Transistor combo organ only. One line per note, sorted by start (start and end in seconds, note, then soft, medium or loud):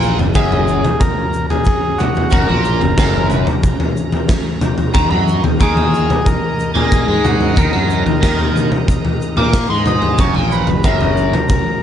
0.35 1.03 G#4 medium
1.00 1.46 A#4 medium
1.50 2.01 G#4 medium
1.98 2.33 F#4 medium
2.33 3.27 A#4 medium
5.63 6.29 G#4 loud
6.26 6.72 A#4 loud
6.77 7.27 G#4 medium
7.25 7.58 F#4 medium
7.59 8.52 A#4 medium
9.87 10.20 D#5 medium
10.20 10.35 C#5 loud
10.52 10.86 B4 medium
10.84 11.48 A#4 medium
11.50 11.83 A#4 medium